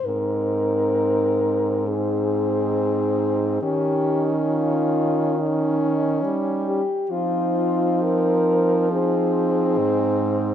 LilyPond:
<<
  \new Staff \with { instrumentName = "French horn" } { \time 4/4 \key aes \major \tempo 4 = 68 bes'2 aes'2 | g'4 f'4 ees'4 r8 g'8 | f'4 bes'4 aes'2 | }
  \new Staff \with { instrumentName = "French horn" } { \time 4/4 \key aes \major ees'2 ees'2 | ees'2 ees'4. r8 | ees'2 ees'2 | }
  \new Staff \with { instrumentName = "French horn" } { \time 4/4 \key aes \major c'2 c'2 | des'2 des'4. r8 | c'2 c'2 | }
  \new Staff \with { instrumentName = "French horn" } { \clef bass \time 4/4 \key aes \major aes,1 | ees2. g8 r8 | f2. aes,4 | }
>>